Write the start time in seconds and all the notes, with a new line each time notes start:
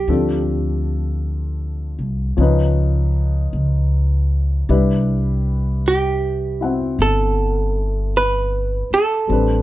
Already playing: G4
0.08 D2 F3 C4 D4 A4
1.99 C2
2.37 C#2 F3 C#4 D#4
2.42 B4
3.53 C#2
4.69 C2 G3 D4 E4 B4
5.88 G4
6.61 C4 E4 F#4 F#5
6.99 G1 A4
8.17 B4
8.91 A4, muted upright bass stroke
9.27 A1 G3 C4
9.31 D4 B4